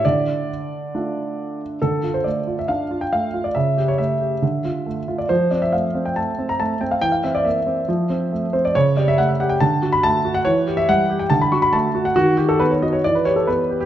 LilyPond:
\new Staff \with { instrumentName = "Grand piano" } { \time 4/4 \key d \minor \tempo 4 = 138 << { d''2.~ d''8 r8 | a'8. c''16 d''8. e''16 f''8. g''16 f''8. d''16 | e''8. cis''16 e''2~ e''8. d''16 | c''8 d''16 e''16 f''8. g''16 a''8. bes''16 a''8 g''16 f''16 |
g''16 f''16 e''16 d''16 e''2~ e''8 c''16 d''16 | \key d \major cis''8 d''16 e''16 fis''16 e''16 fis''16 g''16 a''8. b''16 a''8. fis''16 | cis''8. e''16 fis''8. g''16 a''16 b''16 cis'''16 b''16 a''8. fis''16 | fis'8 g'16 a'16 b'16 cis''16 dis''16 cis''16 d''16 b'16 cis''16 a'16 b'8. g'16 | } \\ { d2 <a d' f'>2 | d8 f'8 a8 f'8 d'8 f'8 a8 f'8 | cis8 g'8 a8 g'8 d8 f'8 a8 f'8 | f8 c'8 a8 c'8 a8 c'8 a8 c'8 |
e8 c'8 bes8 c'8 f8 c'8 a8 c'8 | cis8 g'8 a8 g'8 d8 fis'8 a8 fis'8 | e8 g'8 g8 g'8 d8 fis'8 a8 fis'8 | dis8 fis'8 b8 fis'8 e8 g'8 b8 g'8 | } >> }